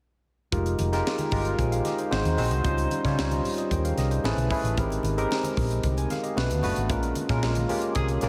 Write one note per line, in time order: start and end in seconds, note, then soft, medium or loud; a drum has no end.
0.52 0.73 F1 medium
0.52 0.81 G#3 medium
0.52 0.81 D#4 medium
0.52 0.81 F4 medium
0.52 0.81 G4 medium
0.52 0.81 A#4 medium
0.52 kick loud
0.52 closed hi-hat medium
0.52 muted conga soft
0.66 closed hi-hat medium
0.78 1.00 F1 medium
0.78 closed hi-hat medium
0.78 high conga medium
0.92 1.21 G#3 medium
0.92 1.21 D#4 medium
0.92 1.21 F4 medium
0.92 1.21 G4 medium
0.92 1.21 A#4 medium
0.92 snare soft
0.92 closed hi-hat soft
1.06 snare loud
1.06 muted conga soft
1.19 closed hi-hat soft
1.19 muted conga soft
1.19 high conga medium
1.31 1.53 G1 medium
1.31 1.70 G#3 medium
1.31 1.58 D#4 medium
1.31 1.59 F4 medium
1.31 1.59 G4 medium
1.31 1.59 A#4 medium
1.31 kick medium
1.31 open hi-hat medium
1.31 low conga medium
1.45 closed hi-hat soft
1.58 1.79 A#1 medium
1.58 1.72 C5 medium
1.58 1.71 G#5 medium
1.58 kick medium
1.58 closed hi-hat medium
1.58 high conga medium
1.58 low conga medium
1.72 1.85 G#4 medium
1.72 1.84 F5 medium
1.72 closed hi-hat medium
1.85 1.98 G4 medium
1.85 1.98 D#5 medium
1.85 snare soft
1.85 closed hi-hat medium
1.85 high conga medium
1.98 2.10 D#4 medium
1.98 2.11 C5 medium
1.98 closed hi-hat soft
2.11 2.22 G#1 medium
2.11 2.32 G#3 medium
2.11 2.33 C4 medium
2.11 2.33 D#4 medium
2.11 2.33 F#4 medium
2.11 2.33 C5 medium
2.11 snare loud
2.11 muted conga soft
2.24 2.35 D#2 medium
2.24 closed hi-hat medium
2.24 muted conga soft
2.24 high conga medium
2.37 2.51 A#1 medium
2.37 2.57 G#3 medium
2.37 2.57 C4 medium
2.37 2.57 D#4 medium
2.37 2.57 F#4 medium
2.37 2.57 C5 medium
2.37 open hi-hat medium
2.37 low conga medium
2.51 2.62 C2 medium
2.51 closed hi-hat medium
2.51 high conga soft
2.64 2.85 C#2 medium
2.64 2.93 G3 medium
2.64 2.93 C#4 medium
2.64 2.93 D#4 medium
2.64 2.93 F4 medium
2.64 2.93 C5 medium
2.64 kick loud
2.64 closed hi-hat medium
2.64 muted conga soft
2.77 closed hi-hat medium
2.77 muted conga soft
2.91 closed hi-hat medium
2.91 high conga medium
3.04 3.15 C#3 medium
3.04 3.33 G3 medium
3.04 3.33 C#4 medium
3.04 3.33 D#4 medium
3.04 3.33 F4 medium
3.04 3.33 C#5 medium
3.04 kick medium
3.04 snare soft
3.04 closed hi-hat soft
3.18 3.39 C#2 medium
3.18 snare loud
3.31 closed hi-hat medium
3.31 muted conga soft
3.31 high conga medium
3.44 open hi-hat medium
3.44 low conga medium
3.58 3.71 G4 medium
3.58 3.70 D#5 medium
3.58 closed hi-hat soft
3.71 3.92 D#2 medium
3.71 3.84 A#4 medium
3.71 3.84 G5 medium
3.71 kick medium
3.71 closed hi-hat medium
3.71 high conga medium
3.71 low conga medium
3.85 3.97 G#4 medium
3.85 3.97 F5 medium
3.85 closed hi-hat medium
3.97 4.18 C2 medium
3.97 4.11 G4 medium
3.97 4.10 D#5 medium
3.97 snare soft
3.97 closed hi-hat medium
3.97 high conga medium
4.11 4.37 D#4 medium
4.11 4.36 C5 medium
4.11 closed hi-hat soft
4.24 4.34 A1 medium
4.24 4.45 A3 medium
4.24 4.45 C#4 medium
4.24 4.45 E4 medium
4.24 4.46 G#4 medium
4.24 4.46 B4 medium
4.24 4.49 A5 medium
4.24 snare loud
4.24 muted conga soft
4.37 4.48 B1 medium
4.37 closed hi-hat medium
4.37 high conga medium
4.50 4.69 A3 medium
4.50 4.70 C#4 medium
4.50 4.70 E4 medium
4.50 4.70 G#4 medium
4.50 4.70 B4 medium
4.50 4.76 E5 medium
4.50 kick medium
4.50 open hi-hat medium
4.50 low conga medium
4.63 4.74 A1 medium
4.63 closed hi-hat medium
4.63 high conga soft
4.77 4.98 G#1 loud
4.77 5.05 G#3 medium
4.77 5.06 C4 medium
4.77 5.06 D#4 medium
4.77 5.06 G4 medium
4.77 5.06 A#4 medium
4.77 kick loud
4.77 closed hi-hat medium
4.77 muted conga soft
4.90 closed hi-hat medium
4.90 muted conga soft
5.03 5.24 G#1 loud
5.03 closed hi-hat medium
5.03 high conga medium
5.17 5.45 G#3 medium
5.17 5.46 C4 medium
5.17 5.46 D#4 medium
5.17 5.46 G4 medium
5.17 5.46 A#4 medium
5.17 closed hi-hat soft
5.31 snare loud
5.31 muted conga soft
5.43 closed hi-hat medium
5.43 high conga medium
5.57 5.78 A#1 medium
5.57 kick medium
5.57 open hi-hat medium
5.57 low conga medium
5.71 closed hi-hat soft
5.83 6.04 C2 medium
5.83 kick medium
5.83 closed hi-hat medium
5.83 high conga medium
5.83 low conga medium
5.97 6.10 C5 medium
5.97 6.10 G#5 medium
5.97 closed hi-hat medium
5.97 muted conga soft
6.10 6.23 G#4 medium
6.10 6.23 F5 medium
6.10 snare soft
6.10 closed hi-hat medium
6.10 high conga medium
6.23 6.49 G4 medium
6.23 6.48 D#5 medium
6.23 closed hi-hat soft
6.36 6.47 B1 medium
6.36 6.57 A3 medium
6.36 6.58 B3 medium
6.36 6.58 D4 medium
6.36 6.58 F#4 medium
6.36 6.58 B4 medium
6.36 snare loud
6.36 muted conga soft
6.50 6.60 D2 medium
6.50 closed hi-hat medium
6.50 high conga medium
6.63 6.74 F#1 medium
6.63 6.82 A3 medium
6.63 6.82 B3 medium
6.63 6.82 D4 medium
6.63 6.82 F#4 medium
6.63 6.83 B4 medium
6.63 open hi-hat medium
6.63 low conga medium
6.76 6.90 G#1 medium
6.76 closed hi-hat medium
6.76 high conga soft
6.89 7.11 A#1 loud
6.89 7.18 G#3 medium
6.89 7.18 A#3 medium
6.89 7.18 C#4 medium
6.89 7.19 F4 medium
6.89 7.19 A#4 medium
6.89 kick loud
6.89 closed hi-hat medium
6.89 muted conga soft
7.03 closed hi-hat medium
7.15 closed hi-hat medium
7.15 high conga medium
7.29 7.40 A#2 loud
7.29 7.58 G#3 medium
7.29 7.58 A#3 medium
7.29 7.58 C#4 medium
7.29 7.58 F4 medium
7.29 7.58 A#4 loud
7.29 kick medium
7.29 snare soft
7.29 closed hi-hat soft
7.43 7.64 A#1 medium
7.43 snare loud
7.43 muted conga soft
7.55 closed hi-hat medium
7.55 muted conga soft
7.55 high conga medium
7.69 8.07 G#3 medium
7.69 8.07 A#3 medium
7.69 8.07 C#4 medium
7.69 8.07 F4 medium
7.69 8.07 G4 medium
7.69 open hi-hat medium
7.69 low conga medium
7.82 closed hi-hat soft
7.95 8.17 C2 medium
7.95 8.07 F3 medium
7.95 8.07 C#4 medium
7.95 8.07 G#4 medium
7.95 kick medium
7.95 closed hi-hat medium
7.95 high conga medium
7.95 low conga medium
8.08 closed hi-hat medium
8.08 muted conga soft
8.21 8.29 A#1 medium
8.21 8.29 G#3 medium
8.21 8.29 A#3 medium
8.21 8.29 C#4 medium
8.21 8.29 F4 medium
8.21 8.29 A#4 medium
8.21 snare soft
8.21 closed hi-hat medium
8.21 high conga medium